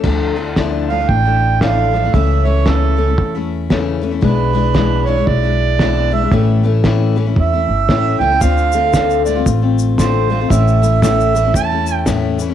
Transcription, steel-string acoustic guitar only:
X:1
M:4/4
L:1/16
Q:"Swing" 1/4=115
K:Dm
V:1 name="Steel-string acoustic guitar"
[D,F,A,DE]2 [F,A,DE]2 [D,F,A,DE]2 [F,A,DE] [A,DE]2 [A,DE]3 [D,F,A,DE]2 [F,A,DE] [A,DE] | [^C,E,A,^CE]2 [E,A,CE]2 [C,E,A,CE]2 [E,A,CE] [A,CE]2 [A,CE]3 [C,E,A,CE]2 [E,A,CE] [A,CE] | [=B,,E,^G,DE]2 [E,G,DE]2 [B,,E,G,DE]2 [E,G,DE] [G,DE]2 [G,DE]3 [B,,E,G,DE]2 [E,G,DE] [G,DE] | [A,,E,A,^CE]2 [E,A,CE]2 [A,,E,A,CE]2 [E,A,CE] [A,CE]2 [A,CE]3 [A,,E,A,CE]2 [E,A,CE] [A,CE] |
[D,A,CF]2 [D,A,CF]2 [D,A,CF]2 [D,A,CF] [A,CF]2 [A,CF]3 [D,A,CF]2 [D,A,CF] [A,CF] | [A,,E,A,^CE]2 [E,A,CE]2 [A,,E,A,CE]2 [E,A,CE] [A,CE]2 [A,CE]3 [A,,E,A,CE]2 [E,A,CE] [A,CE] |]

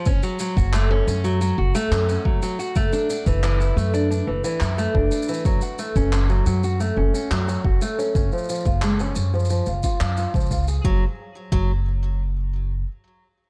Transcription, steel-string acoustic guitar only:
X:1
M:4/4
L:1/16
Q:1/4=89
K:F#m
V:1 name="Steel-string acoustic guitar"
C F, F, F A, C C F, F, F A, C C F, F, F | A, D D E, E, E A, D D E, E, E A, D D E, | F, F A, C C F, F, F A, C C F, F, F A, C | C ^E, E, ^E G, C C E, E, E E E E E, E G |
F, z3 F, z8 z3 |]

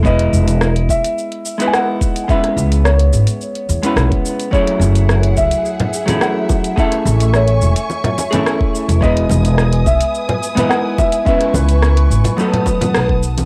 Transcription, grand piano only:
X:1
M:4/4
L:1/16
Q:1/4=107
K:E
V:1 name="Grand piano"
d6 e4- e3/2 g/2 f4 | e4 c8- c2 z2 | c6 e6 f4 | e4 c8- c2 z2 |
d6 e6 f2 e2 | e2 B12 z2 |]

